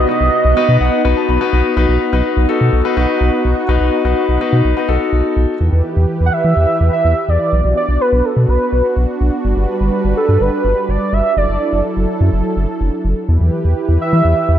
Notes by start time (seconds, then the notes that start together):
Already playing: B3 D#4 F#4 D#5
0.09 B3 D#4 F#4 B4
0.21 B1
0.45 B1
0.57 B3 D#4 F#4 B4 D#5
0.69 B2
0.81 B1 F#5
1.05 B1 B3 D#4 F#4 B4
1.17 A5
1.29 B1 B5
1.41 B3 D#4 F#4 B4
1.53 B1
1.77 B1 B3 D#4 F#4 B4
1.89 B1
2.13 B1 D#4 F#4 B4
2.37 B1
2.49 D#4 F#4 A4
2.61 B2
2.73 B1
2.85 D#4 F#4 B4
2.97 B1 D#4 F#4 B4
3.21 B1
3.45 B1
3.69 B1 D#4 F#4 B4
3.81 B1
4.05 B1 D#4 F#4 B4
4.29 B1
4.41 D#4 F#4 B4
4.53 B2
4.65 B1
4.77 D#4 F#4 B4
4.89 B1 D#4 F#4 A4
5.13 B1
5.37 B1
5.60 E2 E3 E4 G4 B4
5.73 E2
5.97 E2
6.21 E2
6.26 F#5
6.33 E5
6.45 E3
6.57 E2
6.81 E2
6.93 E5
7.05 E2
7.29 E2 D5
7.53 B1 B3 D4 F#4
7.65 B1
7.77 D5
7.89 B1
8.01 B4
8.13 B1
8.25 A4
8.37 B2
8.49 B1 B4
8.73 B1
8.97 B1
9.21 B1
9.45 G1 G3 B4
9.57 G1
9.81 G1
10.05 G1
10.17 A4
10.29 G2
10.41 G1 B4
10.65 G1
10.89 G1 D5
11.13 G1 E5
11.37 F#1 F#3 E4 A4 D5
11.49 F#1
11.73 F#1
11.97 F#1
12.21 F#2
12.33 F#1
12.57 F#1
12.81 F#1
13.05 F#1
13.29 E2 E3 E4 G4 B4
13.41 E2
13.65 E2
13.89 E2
14.01 E5
14.13 E3
14.25 E2
14.49 E2